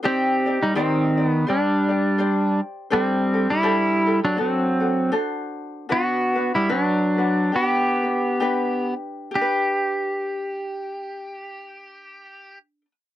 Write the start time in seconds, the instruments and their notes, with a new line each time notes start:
0.03 pedal steel guitar C4 G4, ukulele D#4 G4 C5 D5
0.46 ukulele D#4 G4 D5
0.63 pedal steel guitar G3 D#4
0.75 pedal steel guitar D#3 C4, ukulele D#4 G4 C5 D5
1.18 ukulele D#4 G4 D5
1.27 pedal steel guitar B3
1.47 pedal steel guitar G3 D4, ukulele G4 C5 D5
1.89 ukulele G4 D5
2.18 ukulele G4 C5 D5
2.90 pedal steel guitar G3 C4, ukulele D4 G4 A4 C5
3.34 ukulele D4 G4 A4
3.50 pedal steel guitar G3 E4
3.63 ukulele D4 G4 A4 C5
4.07 ukulele D4 G4 A4
4.25 pedal steel guitar F#3 D4
4.36 ukulele D4 F#4 A4 C5
4.41 pedal steel guitar F#3 C4
4.80 ukulele D4 F#4 A4
5.12 ukulele D4 F#4 A4 C5
5.89 pedal steel guitar B3 F#4, ukulele D4 F#4 B4
6.36 ukulele D4 F#4 B4
6.55 pedal steel guitar G3 E4
6.69 pedal steel guitar F#3 D4, ukulele D4 F#4 B4
7.18 ukulele D4 F#4 B4
7.52 pedal steel guitar B3 G4, ukulele D4 G4 B4
8.03 ukulele D4 B4
8.40 ukulele D4 G4 B4
9.31 ukulele D4 G4
9.35 pedal steel guitar G4
9.41 ukulele B4